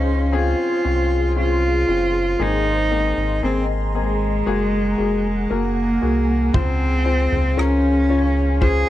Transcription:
0.00 0.55 C#2 medium
0.00 2.42 C#3 soft
0.00 2.42 G#3 medium
0.00 0.32 C4 medium
0.00 0.33 C#4 medium
0.00 0.35 C#4 medium
0.00 2.42 D#4 medium
0.00 0.85 F4 medium
0.00 8.89 G#4 medium
0.00 2.36 C5 medium
0.00 2.42 C5 medium
0.00 2.36 F5 medium
0.00 2.37 C6 medium
0.32 0.82 C4 medium
0.32 0.82 C#4 medium
0.32 1.37 F4 medium
0.32 0.82 G#4 medium
0.84 1.85 C2 medium
0.84 1.34 C4 medium
0.84 1.34 C#4 soft
0.84 1.34 F4 medium
1.36 1.86 C4 medium
1.36 1.86 C#4 medium
1.36 1.86 F4 medium
1.36 2.42 F4 medium
1.88 2.36 F#1 medium
1.88 2.37 C4 medium
1.88 2.37 C#4 soft
1.88 2.38 F4 medium
2.39 3.13 G#1 loud
2.39 3.91 G#2 soft
2.39 2.89 A#3 medium
2.39 2.89 C4 medium
2.39 3.44 D#4 medium
2.39 2.89 G#4 medium
2.39 4.44 D#5 medium
2.39 6.50 A#5 medium
2.39 4.44 C6 medium
2.91 3.40 A#3 medium
2.91 3.41 C4 medium
2.91 3.41 D#4 medium
3.17 3.41 G#1 medium
3.43 4.43 G#1 medium
3.43 3.92 A#3 medium
3.43 3.92 C4 medium
3.43 3.64 C4 medium
3.43 3.92 G#4 medium
3.95 5.53 G#3 medium
3.95 4.44 A#3 medium
3.95 4.44 C4 medium
3.95 4.44 G#4 medium
4.46 4.95 F#1 medium
4.46 4.96 A#3 medium
4.46 4.96 F#4 medium
4.46 4.96 G#4 medium
4.46 6.52 F#5 medium
4.46 8.89 G#5 medium
4.98 5.47 F1 medium
4.98 5.48 A#3 medium
4.98 5.48 F#4 soft
4.98 5.48 G#4 medium
5.50 5.99 F#1 medium
5.50 5.99 A#3 medium
5.50 6.56 A#3 medium
5.50 6.00 F#4 medium
5.50 6.00 A#4 medium
6.02 6.51 C2 medium
6.02 6.51 A#3 medium
6.02 6.51 F#4 medium
6.02 6.52 G#4 medium
6.54 7.28 C#2 loud
6.54 8.06 C#3 medium
6.54 7.03 C4 medium
6.54 7.60 C4 medium
6.54 7.03 F4 medium
6.54 7.04 C5 medium
6.54 8.89 F5 medium
6.54 8.89 C6 medium
6.54 kick medium
6.54 floor tom loud
7.05 7.55 C4 medium
7.05 7.55 F4 medium
7.05 7.55 C5 medium
7.32 7.56 C#2 medium
7.32 floor tom medium
7.57 8.84 C#2 medium
7.57 8.07 C#4 medium
7.57 8.62 C#4 medium
7.57 8.07 F4 medium
7.57 8.07 A#4 medium
7.57 cross-stick medium
8.09 8.59 C#4 medium
8.09 8.59 F4 medium
8.09 8.59 C#5 medium
8.61 8.89 C#4 medium
8.61 8.89 F4 medium
8.61 8.89 G#4 medium
8.61 8.89 C5 loud
8.61 kick medium
8.61 floor tom medium

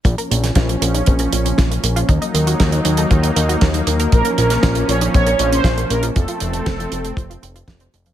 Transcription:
0.05 0.15 A#1 loud
0.05 2.07 F3 medium
0.05 0.16 A#3 medium
0.05 6.12 A#3 medium
0.05 2.07 C#4 medium
0.05 kick loud
0.05 closed hi-hat medium
0.18 0.25 A#4 medium
0.18 closed hi-hat soft
0.31 0.51 A#1 medium
0.31 0.42 A#2 medium
0.31 closed hi-hat medium
0.44 0.50 C#4 medium
0.44 snare soft
0.44 closed hi-hat soft
0.55 0.76 A#1 loud
0.55 0.68 F4 medium
0.55 kick medium
0.55 snare loud
0.55 closed hi-hat medium
0.69 0.76 A#3 medium
0.69 closed hi-hat medium
0.82 1.02 A#1 medium
0.82 0.88 A#3 medium
0.82 closed hi-hat loud
0.94 1.05 D#4 medium
0.94 closed hi-hat soft
1.06 1.28 A#1 loud
1.06 1.18 C4 medium
1.06 kick medium
1.06 closed hi-hat medium
1.19 1.26 A#4 medium
1.19 closed hi-hat medium
1.33 1.53 A#1 medium
1.33 1.44 A#2 medium
1.33 closed hi-hat medium
1.45 1.52 C#4 medium
1.45 closed hi-hat medium
1.58 1.79 A#1 loud
1.58 1.70 F4 medium
1.58 kick medium
1.58 snare loud
1.58 closed hi-hat medium
1.71 1.77 A#3 medium
1.71 closed hi-hat medium
1.83 2.04 A#1 medium
1.83 1.90 A#3 medium
1.83 closed hi-hat loud
1.96 2.07 F4 loud
1.96 closed hi-hat medium
2.09 2.19 D#2 loud
2.09 4.10 F#3 medium
2.09 2.20 D#4 medium
2.09 4.10 D#4 medium
2.09 kick loud
2.09 closed hi-hat medium
2.22 2.28 D#5 medium
2.22 closed hi-hat soft
2.34 2.55 D#2 medium
2.34 2.45 D#3 medium
2.34 closed hi-hat loud
2.47 2.54 F#4 medium
2.47 closed hi-hat medium
2.60 2.80 D#2 loud
2.60 2.72 A#4 medium
2.60 kick loud
2.60 snare loud
2.60 closed hi-hat medium
2.72 2.79 D#4 medium
2.72 closed hi-hat medium
2.85 3.06 D#2 medium
2.85 2.92 D#4 medium
2.85 closed hi-hat medium
2.97 3.09 A4 medium
2.97 closed hi-hat medium
3.11 3.31 D#2 loud
3.11 3.22 F4 medium
3.11 kick loud
3.11 closed hi-hat medium
3.23 3.30 D#5 medium
3.23 closed hi-hat medium
3.36 3.56 D#2 medium
3.36 3.47 D#3 medium
3.36 closed hi-hat loud
3.49 3.55 F#4 medium
3.49 closed hi-hat medium
3.61 3.82 D#2 loud
3.61 3.74 A#4 medium
3.61 kick loud
3.61 snare loud
3.61 closed hi-hat medium
3.74 3.81 D#4 medium
3.74 closed hi-hat medium
3.87 4.07 D#2 medium
3.87 3.94 D#4 medium
3.87 closed hi-hat medium
4.00 4.11 A#4 loud
4.00 closed hi-hat medium
4.12 4.23 A#1 loud
4.12 8.14 F3 medium
4.12 4.23 A#3 medium
4.12 6.14 C#4 medium
4.12 4.37 A#4 loud
4.12 kick loud
4.12 closed hi-hat medium
4.25 4.32 A#4 medium
4.25 closed hi-hat medium
4.38 4.58 A#1 medium
4.38 4.49 A#2 medium
4.38 4.90 A#4 loud
4.38 closed hi-hat medium
4.50 4.57 C#4 medium
4.50 snare soft
4.50 closed hi-hat medium
4.63 4.84 A#1 loud
4.63 4.75 F4 loud
4.63 kick loud
4.63 snare loud
4.63 closed hi-hat medium
4.75 4.82 A#3 medium
4.75 closed hi-hat medium
4.88 5.09 A#1 medium
4.88 4.95 A#3 medium
4.88 5.00 C#5 loud
4.88 closed hi-hat medium
5.01 5.12 D#4 medium
5.01 closed hi-hat medium
5.14 5.35 A#1 medium
5.14 5.25 C4 medium
5.14 5.50 C#5 loud
5.14 kick loud
5.14 closed hi-hat medium
5.27 5.33 A#4 medium
5.27 closed hi-hat medium
5.39 5.60 A#1 medium
5.39 5.50 A#2 medium
5.39 closed hi-hat medium
5.52 5.59 C#4 medium
5.52 5.92 C5 loud
5.52 closed hi-hat medium
5.64 5.85 A#1 loud
5.64 5.77 F4 medium
5.64 kick loud
5.64 snare loud
5.64 closed hi-hat medium
5.77 5.84 A#3 medium
5.77 closed hi-hat medium
5.90 6.11 A#1 medium
5.90 5.97 A#3 medium
5.90 6.02 A#4 medium
5.90 closed hi-hat medium
6.03 6.14 F4 loud
6.03 closed hi-hat medium
6.16 6.26 F1 loud
6.16 6.27 F3 medium
6.16 8.14 A3 medium
6.16 8.14 C4 medium
6.16 7.64 A4 loud
6.16 kick loud
6.16 closed hi-hat medium
6.28 6.35 F4 medium
6.28 closed hi-hat medium
6.40 6.62 F1 medium
6.40 6.52 F2 medium
6.40 closed hi-hat medium
6.53 6.60 A3 medium
6.53 closed hi-hat medium
6.66 6.87 F1 loud
6.66 6.79 C4 loud
6.66 kick loud
6.66 snare loud
6.66 closed hi-hat medium
6.79 6.86 F3 medium
6.79 closed hi-hat soft
6.92 7.12 F1 medium
6.92 6.99 F3 medium
6.92 closed hi-hat medium
7.05 7.16 A3 medium
7.05 closed hi-hat medium
7.17 7.38 F1 medium
7.17 7.28 F3 medium
7.17 kick loud
7.17 closed hi-hat medium
7.30 7.37 F4 medium
7.30 closed hi-hat soft
7.43 7.63 F1 medium
7.43 7.54 C4 medium
7.43 closed hi-hat medium
7.55 7.66 F4 medium
7.55 closed hi-hat soft
7.68 7.88 F1 loud
7.68 7.79 F3 loud
7.68 kick loud
7.68 snare loud
7.68 closed hi-hat medium
7.80 7.93 C4 medium
7.80 closed hi-hat medium
7.94 8.14 F1 medium
7.94 8.05 A3 medium
7.94 closed hi-hat medium
8.06 8.14 F3 loud
8.06 closed hi-hat soft

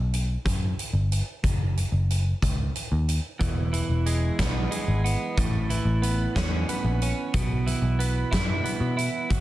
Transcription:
0.00 0.36 B1 medium
0.14 closed hi-hat medium
0.45 0.72 F#2 medium
0.45 kick medium
0.45 closed hi-hat medium
0.79 closed hi-hat medium
0.93 1.20 G1 medium
1.12 closed hi-hat medium
1.43 1.84 F#1 medium
1.43 kick loud
1.43 closed hi-hat medium
1.77 closed hi-hat soft
1.92 2.33 F#1 medium
2.10 closed hi-hat soft
2.42 2.69 C#2 medium
2.42 kick medium
2.42 closed hi-hat medium
2.76 closed hi-hat medium
2.92 3.18 D#2 medium
3.09 closed hi-hat medium
3.39 3.81 E1 medium
3.39 5.04 E2 medium
3.39 kick loud
3.39 closed hi-hat medium
3.73 5.70 E3 medium
3.73 closed hi-hat medium
3.89 4.30 E1 medium
4.06 4.70 G#3 medium
4.06 closed hi-hat medium
4.39 4.66 B1 medium
4.39 5.04 B3 medium
4.39 kick medium
4.39 snare loud
4.39 closed hi-hat medium
4.71 5.37 G#3 medium
4.71 closed hi-hat medium
4.88 5.15 G#1 medium
5.04 5.41 B3 medium
5.04 closed hi-hat medium
5.37 5.78 A1 medium
5.37 7.02 A2 medium
5.37 kick loud
5.37 closed hi-hat medium
5.70 7.34 E3 medium
5.70 closed hi-hat medium
5.85 6.26 A1 medium
6.02 6.68 B3 medium
6.02 closed hi-hat medium
6.36 6.63 E2 loud
6.36 7.01 C#4 medium
6.36 kick medium
6.36 snare loud
6.36 closed hi-hat medium
6.69 7.34 B3 medium
6.69 closed hi-hat medium
6.84 7.11 A#1 medium
7.02 7.35 C#4 medium
7.02 closed hi-hat medium
7.34 7.75 B1 medium
7.34 8.98 B2 medium
7.34 kick medium
7.34 closed hi-hat medium
7.66 9.29 E3 medium
7.66 closed hi-hat soft
7.82 8.23 B1 medium
7.99 8.63 B3 medium
7.99 closed hi-hat medium
8.31 8.59 F#2 medium
8.31 8.96 E4 medium
8.31 kick medium
8.31 snare loud
8.31 closed hi-hat medium
8.64 9.30 B3 medium
8.64 closed hi-hat medium
8.80 9.08 B2 medium
8.97 9.30 E4 medium
8.97 closed hi-hat medium
9.30 9.40 F#1 medium
9.30 9.40 F#3 medium
9.30 kick loud
9.30 closed hi-hat medium

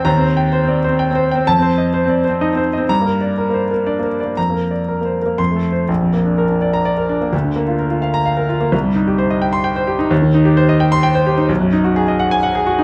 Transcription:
0.05 1.42 D#2 medium
0.05 0.30 A#5 medium
0.17 0.35 C4 medium
0.21 0.46 C5 medium
0.37 0.62 G5 medium
0.53 0.78 C5 medium
0.65 0.83 C4 medium
0.65 0.84 D5 soft
0.84 1.07 C4 medium
0.84 1.09 C5 medium
0.99 1.24 G5 medium
1.11 1.30 C4 medium
1.15 1.40 C5 medium
1.31 1.47 C4 medium
1.31 1.47 G5 medium
1.47 2.86 F2 medium
1.47 1.72 A5 medium
1.58 1.77 C4 medium
1.58 1.87 C5 medium
1.78 2.03 D#5 medium
1.94 2.19 C5 medium
2.05 2.24 C4 medium
2.05 2.25 D5 medium
2.24 2.50 C5 medium
2.29 2.48 C4 medium
2.41 2.60 D#4 medium
2.41 2.67 D#5 medium
2.53 2.72 C4 medium
2.53 2.83 C5 medium
2.73 2.89 D#5 medium
2.78 2.90 C4 medium
2.89 4.33 G2 medium
2.89 3.15 A#5 medium
3.01 3.21 A#3 medium
3.01 3.31 A#4 medium
3.21 3.47 D5 medium
3.38 3.64 A#4 medium
3.50 3.69 A#3 soft
3.54 3.70 C5 soft
3.71 3.94 A#3 soft
3.71 3.97 A#4 soft
3.86 4.06 D4 medium
3.86 4.13 D5 medium
3.99 4.19 A#3 soft
4.04 4.30 A#4 medium
4.20 4.37 D5 medium
4.25 4.37 A#3 soft
4.37 5.35 F2 medium
4.37 4.64 A#5 medium
4.50 4.70 A#3 soft
4.54 4.81 A#4 soft
4.71 4.98 D5 soft
4.89 5.15 A#4 medium
5.01 5.21 A#3 soft
5.01 5.22 C5 soft
5.22 5.39 A#3 soft
5.22 5.39 A#4 soft
5.38 5.87 F2 medium
5.38 5.65 C6 medium
5.51 5.71 A3 soft
5.56 5.83 A4 soft
5.72 5.89 C5 medium
5.88 7.29 A#1 medium
6.01 6.21 F2 soft
6.14 6.33 A#3 medium
6.25 6.45 D4 medium
6.38 6.57 A#4 medium
6.49 6.68 D4 medium
6.61 6.81 D5 medium
6.73 6.93 A#5 medium
6.85 7.04 D5 medium
6.97 7.16 A#4 medium
7.09 7.28 D4 medium
7.21 7.33 A#3 medium
7.33 8.69 D2 medium
7.45 7.63 D3 soft
7.56 7.75 A#3 medium
7.68 7.87 F4 medium
7.79 7.98 A#4 medium
7.90 8.10 F4 medium
8.02 8.21 F5 medium
8.14 8.33 A#5 medium
8.26 8.45 F5 medium
8.37 8.56 A#4 medium
8.49 8.68 F4 medium
8.61 8.73 A#3 medium
8.72 10.07 C2 medium
8.84 9.03 G2 medium
8.95 9.14 D#4 medium
9.07 9.26 G4 medium
9.18 9.38 C5 medium
9.30 9.49 D#5 medium
9.42 9.61 G5 medium
9.53 9.72 C6 medium
9.64 9.83 G5 medium
9.76 9.95 C5 medium
9.87 10.06 G4 medium
9.99 10.11 D#4 medium
10.11 11.45 D#2 medium
10.22 10.41 D#3 medium
10.34 10.53 D#4 medium
10.45 10.64 G4 medium
10.57 10.76 C5 medium
10.69 10.87 D#5 medium
10.80 10.99 G5 medium
10.92 11.10 C6 loud
11.03 11.22 G5 medium
11.15 11.33 C5 medium
11.27 11.45 G4 medium
11.37 11.49 D#4 medium
11.49 12.84 B1 medium
11.61 11.79 F#2 medium
11.73 11.91 D#4 medium
11.84 12.03 F#4 medium
11.96 12.15 G#4 medium
12.08 12.27 D#5 medium
12.20 12.38 F#5 medium
12.31 12.50 G#5 medium
12.43 12.62 F#5 medium
12.55 12.74 G#4 medium
12.66 12.84 F#4 medium
12.78 12.84 D#4 medium

